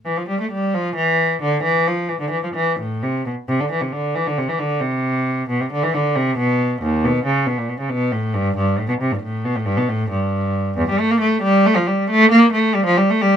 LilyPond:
\new Staff \with { instrumentName = "Cello" } { \clef bass \time 12/8 \key a \minor \tempo 4. = 90 e16 f16 g16 a16 g8 f8 e4 d8 e8 f8 e16 d16 e16 f16 e8 | a,8 c8 b,8 c16 d16 e16 c16 d8 e16 d16 c16 e16 d8 c4. | b,16 c16 d16 e16 d8 c8 b,4 dis,8 b,8 cis8 b,16 bes,16 b,16 cis16 b,8 | a,8 g,8 g,8 a,16 b,16 c16 g,16 a,8 b,16 a,16 g,16 b,16 a,8 g,4. |
\key g \dorian e,16 g16 a16 bes16 a8 g8 a16 f16 g8 a8 bes8 a8 g16 f16 g16 a16 g8 | }